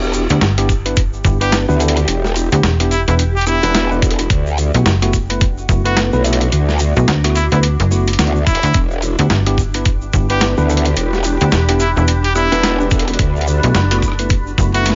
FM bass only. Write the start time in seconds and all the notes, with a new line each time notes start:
0.30 D2
0.42 G1
1.25 G1
2.52 D2
2.64 E1
3.08 E1
4.74 B1
4.86 F#1
5.69 F#1
6.97 B1
7.08 D2
7.52 D2
7.80 F#1
8.63 D2
9.19 D2
9.30 G1
10.14 G1
11.41 D2
11.53 E1
11.97 E1
13.64 B1
13.75 F#1
14.58 F#1